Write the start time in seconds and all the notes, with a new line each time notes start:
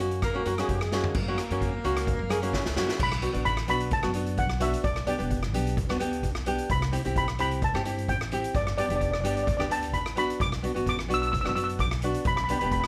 Already playing: F#2 D#5
0.00 A#3 C#4 F#4
0.11 closed hi-hat
0.22 A#3 A#4, kick, cross-stick, closed hi-hat
0.34 A#3 C#4 F#4
0.45 F#2 A#3 C#4 F#4, closed hi-hat
0.58 G#3 A#3 C#4 F#4 G#4, cross-stick, closed hi-hat
0.69 F#2 G#3 G#4, kick, closed hi-hat
0.81 cross-stick
0.92 A#3 C#4 F#4, snare
1.04 floor tom
1.14 F#2 A#3, kick, crash
1.28 A#3 C#4 F#4
1.38 cross-stick, closed hi-hat
1.50 F#2 A#3 C#4 F#4, closed hi-hat
1.61 kick, closed hi-hat
1.84 C#2 A#3 C#4 F#4, closed hi-hat
1.97 cross-stick, closed hi-hat
2.07 kick, closed hi-hat
2.19 F#2
2.29 A#3 C#4 G#4, cross-stick, closed hi-hat
2.42 A#3 C#4 F#4, closed hi-hat
2.53 C#3 C#4, kick, snare
2.66 C#2, snare
2.76 F#2 A#3 C#4 F#4, snare
2.89 snare
3.00 B1 B5, kick, crash
3.12 cross-stick
3.22 B3 D4 F#4, closed hi-hat
3.33 A1 B3 D4 F#4, closed hi-hat
3.45 B5, kick, closed hi-hat
3.57 cross-stick
3.68 B1 B3 D4 F#4 B5, closed hi-hat
3.80 closed hi-hat
3.91 A5, kick, closed hi-hat
4.02 F#2 B3 D4 F#4, cross-stick
4.14 B3 D4 F#4, closed hi-hat
4.26 closed hi-hat
4.37 B1 F#5, kick, closed hi-hat
4.50 cross-stick
4.60 B3 D4 F#4 E5, closed hi-hat
4.73 closed hi-hat
4.84 B1 D5, kick, closed hi-hat
4.96 cross-stick
5.07 B3 D4 G4 D5, closed hi-hat
5.18 E1 B3 D4 G4, closed hi-hat
5.30 kick, closed hi-hat
5.43 cross-stick
5.53 B1 B3 D4 G4, closed hi-hat
5.67 closed hi-hat
5.77 kick, closed hi-hat
5.89 D2 B3 D4 F#4, cross-stick
5.99 B3 D4 G4, closed hi-hat
6.13 closed hi-hat
6.23 B1, kick, closed hi-hat
6.35 cross-stick
6.46 B3 D4 G4, closed hi-hat
6.58 closed hi-hat
6.70 C2 B5, kick, closed hi-hat
6.82 cross-stick
6.92 C4 E4 G4, closed hi-hat
7.05 B1 C4 E4 G4, closed hi-hat
7.16 B5, kick, closed hi-hat
7.28 cross-stick
7.39 C2 C4 E4 G4 B5, closed hi-hat
7.51 closed hi-hat
7.62 A5, kick, closed hi-hat
7.74 G2 C4 E4 G4, cross-stick
7.85 C4 E4 G4, closed hi-hat
7.98 closed hi-hat
8.08 A1 G5, kick, closed hi-hat
8.21 cross-stick
8.32 C4 E4 G4, closed hi-hat
8.44 closed hi-hat
8.55 G1 D5, kick, closed hi-hat
8.67 cross-stick
8.78 B3 D4 G4 D5, closed hi-hat
8.86 E1 B3 D4 D5, closed hi-hat
8.91 G4
8.95 D5
9.01 D5, kick, closed hi-hat
9.11 D5, cross-stick
9.21 G1 B3 D4 G4 D5, closed hi-hat
9.27 D5
9.35 D5, closed hi-hat
9.43 D5
9.47 D5, kick, closed hi-hat
9.57 D2 B3 D4 G4 D5, cross-stick
9.69 B3 D4 G4 A5, closed hi-hat
9.83 closed hi-hat
9.93 A1 B5, kick, closed hi-hat
10.06 cross-stick
10.16 B3 D4 F#4 B5, closed hi-hat
10.30 closed hi-hat
10.40 B1 D6, kick, closed hi-hat
10.52 cross-stick
10.63 B3 D4 F#4, closed hi-hat
10.74 A1 B3 D4 F#4, closed hi-hat
10.87 D6, kick, closed hi-hat
10.99 cross-stick
11.08 B1 B3 D4 F#4, closed hi-hat
11.14 E6
11.22 E6, closed hi-hat
11.27 E6
11.32 E6, kick, closed hi-hat
11.41 B3 D4 F#4 E6
11.46 F#2 E6, cross-stick
11.55 B3 D4 F#4 E6, closed hi-hat
11.64 E6
11.69 closed hi-hat
11.79 B1 D6, kick, closed hi-hat
11.91 cross-stick
12.02 B3 D4 F#4, closed hi-hat
12.14 closed hi-hat
12.25 B1 B5, kick, closed hi-hat
12.36 B5, cross-stick
12.44 B5
12.49 B3 D4 G4 B5, closed hi-hat
12.59 E1 B3 D4 G4 B5, closed hi-hat
12.66 B5
12.71 B5, kick, closed hi-hat
12.80 B5, cross-stick